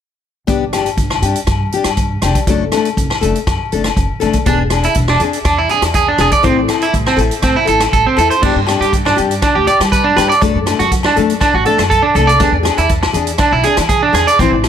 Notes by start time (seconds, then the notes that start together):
0.47 G1 B3 D4 G4, kick, closed hi-hat
0.73 D4 G4, cross-stick, closed hi-hat, low agogo
0.86 closed hi-hat
0.97 G1, kick, closed hi-hat
1.10 cross-stick, low agogo
1.22 G2 D4 G4, closed hi-hat
1.36 closed hi-hat
1.47 G2, kick, cross-stick, closed hi-hat, low agogo
1.72 G4, closed hi-hat
1.77 D4
1.84 G2, cross-stick, closed hi-hat, low agogo
1.97 kick, closed hi-hat
2.22 F1 D4 G4, cross-stick, closed hi-hat, low agogo
2.35 kick, closed hi-hat
2.47 F#1 F#3 A3 D4 A4, kick, closed hi-hat
2.72 A3 D4 A4, cross-stick, closed hi-hat, low agogo
2.85 closed hi-hat
2.97 F#1, kick, closed hi-hat
3.10 cross-stick, low agogo
3.21 F#1 A3 D4 A4, closed hi-hat
3.35 closed hi-hat
3.47 F#2, kick, cross-stick, closed hi-hat, low agogo
3.72 F#1 A3 D4 A4, closed hi-hat
3.84 cross-stick, closed hi-hat, low agogo
3.97 F#1, kick, closed hi-hat
4.20 F#1 A3 D4 A4, closed hi-hat, low agogo
4.33 kick, closed hi-hat
4.46 E1 B3 D4 G#4, kick, closed hi-hat
4.70 D4 G#4, cross-stick, closed hi-hat, low agogo
4.83 E4, closed hi-hat
4.94 E1, kick, closed hi-hat
5.08 D4, cross-stick, low agogo
5.20 E2 G#4, closed hi-hat
5.24 D4
5.33 closed hi-hat
5.45 E2 D4, kick, cross-stick, closed hi-hat, low agogo
5.58 E4
5.69 G#4, muted steel-string acoustic guitar stroke, closed hi-hat
5.74 D4
5.82 E2, cross-stick, closed hi-hat, low agogo
5.94 G#4, kick, closed hi-hat
6.08 D4
6.18 E1 D4 G#4, cross-stick, closed hi-hat, low agogo
6.31 D5, kick, closed hi-hat
6.43 A1 C4 E4 A4, kick, closed hi-hat
6.68 E4 A4, cross-stick, closed hi-hat, low agogo
6.82 E4, closed hi-hat
6.93 A1, kick, closed hi-hat
7.06 C4, cross-stick, low agogo
7.17 A1 E4 A4, closed hi-hat
7.31 closed hi-hat
7.42 A2 C4, kick, cross-stick, closed hi-hat, low agogo
7.56 E4
7.65 A1 E4 A4, closed hi-hat
7.80 cross-stick, closed hi-hat, low agogo
7.93 A1 A4, kick, closed hi-hat
8.07 C4
8.17 E2 E4 A4, closed hi-hat, low agogo
8.30 C5, closed hi-hat
8.43 G2 B3 D4 G4, kick, crash
8.56 G2
8.67 G4, cross-stick, closed hi-hat, low agogo
8.71 D4
8.81 G2 G4, closed hi-hat
8.93 kick, closed hi-hat
9.05 D4, cross-stick, low agogo
9.17 G2 D4 G4, closed hi-hat
9.31 closed hi-hat
9.42 D4, kick, cross-stick, closed hi-hat, low agogo
9.55 D2 G4
9.67 G4 D5, muted steel-string acoustic guitar stroke, closed hi-hat
9.80 G3, cross-stick, closed hi-hat, low agogo
9.92 B4, kick, closed hi-hat
10.04 D4
10.16 G2 D4 G4 B4, cross-stick, closed hi-hat, low agogo
10.29 D5, closed hi-hat
10.41 F#2 F#3 A3 D4 A4, muted clean electric guitar stroke, kick, closed hi-hat
10.55 F#2
10.66 A3 D4 A4, cross-stick, closed hi-hat, low agogo
10.79 F#2 F#4, closed hi-hat
10.92 kick, closed hi-hat
11.03 D4, cross-stick, low agogo
11.16 F#2 A3 D4 A4, closed hi-hat
11.30 closed hi-hat
11.41 D4, kick, cross-stick, closed hi-hat, low agogo
11.54 A1 F#4
11.65 A3 D4 A4, closed hi-hat
11.78 F#2, cross-stick, closed hi-hat, low agogo
11.90 A4, kick, closed hi-hat
12.03 D4
12.15 C2 A3 D4 A4, closed hi-hat, low agogo
12.27 D5, closed hi-hat
12.40 E2 B3 D4 G#4, kick, closed hi-hat
12.52 E2
12.63 D4 G#4, cross-stick, closed hi-hat, low agogo
12.78 E2 E4, closed hi-hat
12.89 kick, closed hi-hat
13.03 muted clean electric guitar stroke, cross-stick, low agogo
13.13 E2 D4 G#4, closed hi-hat
13.27 closed hi-hat
13.38 D4, kick, cross-stick, closed hi-hat, low agogo
13.52 B1 E4
13.63 D4 G#4, closed hi-hat
13.77 E3, cross-stick, closed hi-hat, low agogo
13.89 G#4, kick, closed hi-hat
14.03 D4
14.13 E2 D4 G#4, cross-stick, closed hi-hat, low agogo
14.27 D5, closed hi-hat
14.39 A1 E3 C4 E4, kick, closed hi-hat
14.52 A1
14.64 E4, cross-stick, closed hi-hat, low agogo